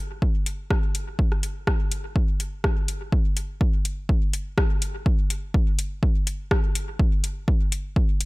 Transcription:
0.22 kick loud
0.46 closed hi-hat medium
0.71 kick loud
0.71 cross-stick medium
0.95 closed hi-hat medium
1.19 kick loud
1.32 cross-stick soft
1.43 closed hi-hat medium
1.67 kick loud
1.67 cross-stick medium
1.92 closed hi-hat medium
2.16 kick loud
2.40 closed hi-hat medium
2.64 kick loud
2.64 cross-stick medium
2.88 closed hi-hat medium
3.12 kick loud
3.37 closed hi-hat medium
3.61 kick loud
3.85 closed hi-hat medium
4.09 kick loud
4.33 closed hi-hat medium
4.58 kick loud
4.58 cross-stick loud
4.82 closed hi-hat medium
5.06 kick loud
5.30 closed hi-hat medium
5.54 kick loud
5.79 closed hi-hat medium
6.03 kick loud
6.27 closed hi-hat medium
6.51 kick loud
6.51 cross-stick medium
6.75 closed hi-hat medium
7.00 kick loud
7.24 closed hi-hat medium
7.48 kick loud
7.72 closed hi-hat medium
7.96 kick loud
8.21 closed hi-hat medium

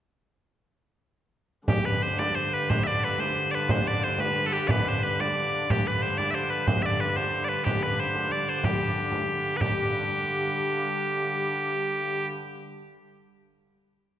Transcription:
1.68 5.69 G2 medium
1.68 5.69 D3 medium
1.68 1.85 G4 medium
1.68 frame drum medium
1.85 2.03 B4 medium
1.85 frame drum soft
2.03 2.19 C5 medium
2.19 2.35 D5 medium
2.19 frame drum medium
2.35 2.54 C5 medium
2.35 frame drum soft
2.54 2.70 B4 medium
2.70 2.84 C5 medium
2.70 frame drum medium
2.84 3.04 D5 medium
2.84 2.87 E5 medium
2.84 frame drum soft
3.04 3.20 B4 medium
3.19 3.51 C5 medium
3.19 frame drum medium
3.36 frame drum soft
3.51 3.71 B4 medium
3.51 3.55 D5 medium
3.69 3.87 C5 medium
3.69 frame drum medium
3.86 4.04 D5 medium
3.86 frame drum soft
4.04 4.20 C5 medium
4.19 4.46 B4 medium
4.19 frame drum medium
4.36 frame drum soft
4.46 4.53 A4 medium
4.53 4.68 G4 medium
4.68 4.89 B4 medium
4.68 4.71 D5 medium
4.68 frame drum medium
4.89 5.03 C5 medium
5.03 5.20 B4 medium
5.03 frame drum soft
5.20 5.71 D5 medium
5.20 frame drum medium
5.69 9.61 G2 medium
5.69 9.61 D3 medium
5.69 5.87 G4 medium
5.69 frame drum medium
5.87 6.03 B4 medium
5.87 frame drum soft
6.03 6.18 C5 medium
6.18 6.31 D5 medium
6.18 frame drum medium
6.31 6.50 C5 medium
6.31 6.35 E5 medium
6.35 frame drum soft
6.50 6.68 B4 medium
6.67 6.82 C5 medium
6.67 frame drum medium
6.82 7.00 D5 medium
6.82 6.86 E5 medium
6.82 frame drum soft
7.00 7.17 B4 medium
7.17 7.44 C5 medium
7.17 frame drum soft
7.34 frame drum soft
7.44 7.49 D5 medium
7.49 7.64 B4 medium
7.64 7.83 G4 medium
7.64 frame drum medium
7.83 8.00 B4 medium
7.83 frame drum soft
8.00 8.32 C5 medium
8.15 frame drum soft
8.31 8.49 D5 medium
8.31 frame drum soft
8.49 8.65 C5 medium
8.64 9.57 G4 medium
8.64 frame drum medium
8.81 frame drum soft
9.12 frame drum soft
9.57 12.30 D3 medium
9.57 9.61 B4 medium
9.61 12.30 G2 medium
9.61 12.28 G4 medium
9.61 frame drum medium

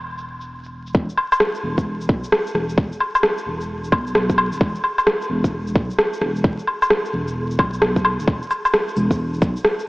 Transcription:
0.00 0.93 E1 medium
0.18 shaker soft
0.41 shaker medium
0.64 shaker soft
0.86 shaker medium
0.95 1.08 E1 loud
0.95 kick loud
1.09 shaker soft
1.18 low woodblock soft
1.32 low woodblock medium
1.32 shaker medium
1.40 cross-stick loud
1.55 shaker soft
1.63 2.10 E1 medium
1.78 kick medium
1.78 shaker medium
2.01 shaker soft
2.09 2.22 B1 medium
2.09 kick loud
2.24 shaker medium
2.32 cross-stick loud
2.47 shaker soft
2.55 2.76 E1 medium
2.55 cross-stick medium
2.69 shaker medium
2.78 2.91 E1 loud
2.78 kick loud
2.92 shaker soft
3.00 low woodblock soft
3.15 low woodblock medium
3.15 shaker medium
3.23 cross-stick loud
3.38 shaker soft
3.46 3.94 E1 medium
3.61 shaker medium
3.84 shaker soft
3.92 4.51 B1 medium
3.92 kick loud
3.92 low woodblock medium
4.07 shaker medium
4.15 cross-stick loud
4.30 kick medium
4.30 shaker soft
4.38 low woodblock medium
4.52 4.60 D1 medium
4.52 shaker medium
4.61 4.74 E1 loud
4.61 kick loud
4.75 shaker soft
4.84 low woodblock soft
4.98 low woodblock soft
4.98 shaker medium
5.07 cross-stick loud
5.21 shaker soft
5.30 5.77 E1 loud
5.44 kick medium
5.44 shaker medium
5.67 shaker soft
5.75 5.89 B1 medium
5.75 kick loud
5.90 shaker medium
5.99 cross-stick loud
6.13 shaker soft
6.21 6.43 E1 medium
6.21 cross-stick medium
6.36 shaker medium
6.44 6.58 E1 medium
6.44 kick loud
6.59 shaker soft
6.67 low woodblock soft
6.82 low woodblock medium
6.82 shaker medium
6.90 cross-stick loud
7.05 shaker soft
7.13 7.60 E1 medium
7.28 shaker medium
7.51 shaker soft
7.59 8.17 B1 medium
7.59 kick loud
7.59 low woodblock medium
7.74 shaker medium
7.82 cross-stick loud
7.96 kick medium
7.96 shaker soft
8.05 low woodblock medium
8.19 8.27 D1 medium
8.19 shaker medium
8.28 8.41 E1 loud
8.28 kick loud
8.43 shaker soft
8.51 cabasa medium
8.51 low woodblock soft
8.65 low woodblock soft
8.65 shaker medium
8.74 cross-stick loud
8.88 shaker soft
8.96 9.43 E1 loud
8.96 cabasa medium
9.11 kick medium
9.11 shaker medium
9.34 shaker soft
9.42 9.55 B1 medium
9.42 kick loud
9.42 cabasa medium
9.56 shaker medium
9.65 cross-stick loud
9.79 shaker soft

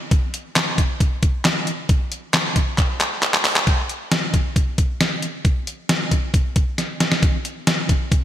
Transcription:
0.11 kick loud
0.11 closed hi-hat medium
0.34 closed hi-hat medium
0.56 snare loud
0.56 clap medium
0.56 closed hi-hat medium
0.78 kick medium
0.78 closed hi-hat medium
1.00 kick loud
1.00 closed hi-hat medium
1.23 kick loud
1.23 closed hi-hat medium
1.45 snare loud
1.45 clap medium
1.45 closed hi-hat medium
1.67 closed hi-hat medium
1.89 kick loud
1.89 closed hi-hat medium
2.12 closed hi-hat medium
2.34 snare loud
2.34 clap loud
2.34 closed hi-hat medium
2.56 kick medium
2.56 closed hi-hat medium
2.78 kick loud
2.78 clap medium
2.78 closed hi-hat medium
3.00 clap medium
3.00 closed hi-hat medium
3.23 clap medium
3.23 closed hi-hat medium
3.34 clap medium
3.45 clap loud
3.45 open hi-hat medium
3.56 clap loud
3.67 kick loud
3.67 closed hi-hat medium
3.89 closed hi-hat medium
4.12 snare loud
4.12 closed hi-hat medium
4.34 kick medium
4.34 closed hi-hat medium
4.56 kick medium
4.56 closed hi-hat medium
4.78 kick medium
4.78 closed hi-hat medium
5.01 snare loud
5.01 closed hi-hat medium
5.22 closed hi-hat medium
5.45 kick loud
5.45 closed hi-hat medium
5.67 closed hi-hat medium
5.89 snare loud
5.89 closed hi-hat medium
6.11 kick medium
6.11 closed hi-hat medium
6.34 kick loud
6.34 closed hi-hat medium
6.56 kick loud
6.56 closed hi-hat medium
6.78 snare medium
6.78 closed hi-hat medium
7.00 snare medium
7.00 closed hi-hat medium
7.12 snare medium
7.23 kick loud
7.23 closed hi-hat medium
7.45 closed hi-hat medium
7.67 snare loud
7.67 closed hi-hat medium
7.89 kick medium
7.89 closed hi-hat medium
8.12 kick medium
8.12 closed hi-hat medium

